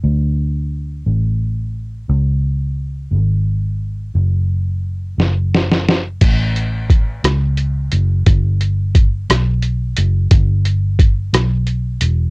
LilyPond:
<<
  \new Staff \with { instrumentName = "Fingered electric bass" } { \clef bass \time 6/8 \key a \mixolydian \tempo 4. = 59 d,4. a,,4. | cis,4. gis,,4. | fis,,4. fis,,4. | a,,4. cis,4 fis,,8 |
g,,4. b,,4 fis,,8 | g,,4. b,,4 e,,8 | }
  \new DrumStaff \with { instrumentName = "Drums" } \drummode { \time 6/8 r4. r4. | r4. r4. | r4. sn8 sn16 sn16 sn8 | <cymc hh bd>8 hh8 <hh bd>8 <hh ss>8 hh8 hh8 |
<hh bd>8 hh8 <hh bd>8 <hh ss>8 hh8 hh8 | <hh bd>8 hh8 <hh bd>8 <hh ss>8 hh8 hh8 | }
>>